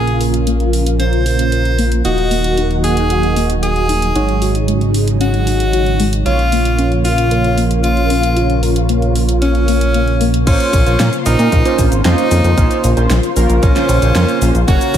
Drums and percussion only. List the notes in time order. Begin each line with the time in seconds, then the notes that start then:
0.07 closed hi-hat
0.21 open hi-hat
0.34 closed hi-hat
0.47 closed hi-hat
0.60 closed hi-hat
0.73 open hi-hat
0.86 closed hi-hat
1.00 closed hi-hat
1.13 closed hi-hat
1.26 open hi-hat
1.39 closed hi-hat
1.52 closed hi-hat
1.65 closed hi-hat
1.79 open hi-hat
1.92 closed hi-hat
2.05 closed hi-hat
2.18 closed hi-hat
2.31 open hi-hat
2.44 closed hi-hat
2.58 closed hi-hat
2.71 closed hi-hat
2.84 open hi-hat
2.97 closed hi-hat
3.10 closed hi-hat
3.23 closed hi-hat
3.36 open hi-hat
3.50 closed hi-hat
3.63 closed hi-hat
3.76 closed hi-hat
3.89 open hi-hat
4.02 closed hi-hat
4.15 closed hi-hat
4.29 closed hi-hat
4.42 open hi-hat
4.55 closed hi-hat
4.68 closed hi-hat
4.81 closed hi-hat
4.94 open hi-hat
5.08 closed hi-hat
5.21 closed hi-hat
5.34 closed hi-hat
5.47 open hi-hat
5.60 closed hi-hat
5.73 closed hi-hat
5.86 closed hi-hat
6.00 open hi-hat
6.13 closed hi-hat
6.26 closed hi-hat
6.39 closed hi-hat
6.52 open hi-hat
6.65 closed hi-hat
6.79 closed hi-hat
6.92 closed hi-hat
7.05 open hi-hat
7.18 closed hi-hat
7.31 closed hi-hat
7.44 closed hi-hat
7.58 open hi-hat
7.71 closed hi-hat
7.84 closed hi-hat
7.97 closed hi-hat
8.10 open hi-hat
8.23 closed hi-hat
8.37 closed hi-hat
8.50 closed hi-hat
8.63 open hi-hat
8.76 closed hi-hat
8.89 closed hi-hat
9.02 closed hi-hat
9.15 open hi-hat
9.29 closed hi-hat
9.42 closed hi-hat
9.55 closed hi-hat
9.68 open hi-hat
9.81 closed hi-hat
9.94 closed hi-hat
10.08 closed hi-hat
10.21 open hi-hat
10.34 closed hi-hat
10.47 kick, closed hi-hat, crash, shaker
10.60 closed hi-hat, shaker
10.73 kick, open hi-hat, shaker
10.87 closed hi-hat, shaker
11.00 snare, closed hi-hat, shaker
11.13 closed hi-hat, shaker
11.26 open hi-hat, shaker
11.39 closed hi-hat, shaker
11.52 kick, closed hi-hat, shaker
11.65 closed hi-hat, shaker
11.79 kick, open hi-hat, shaker
11.92 closed hi-hat, shaker
12.05 snare, closed hi-hat, shaker
12.18 closed hi-hat, shaker
12.31 open hi-hat, shaker
12.44 closed hi-hat, shaker
12.58 kick, closed hi-hat, shaker
12.71 closed hi-hat, shaker
12.84 open hi-hat, shaker
12.97 closed hi-hat, shaker
13.10 snare, closed hi-hat, shaker
13.23 closed hi-hat, shaker
13.36 open hi-hat, shaker
13.50 closed hi-hat, shaker
13.63 kick, closed hi-hat, shaker
13.76 snare, closed hi-hat, shaker
13.89 open hi-hat, shaker
14.02 closed hi-hat, shaker
14.15 snare, closed hi-hat, shaker
14.29 closed hi-hat, shaker
14.42 open hi-hat, shaker
14.55 closed hi-hat, shaker
14.68 kick, closed hi-hat, shaker
14.81 closed hi-hat, shaker
14.94 kick, open hi-hat, shaker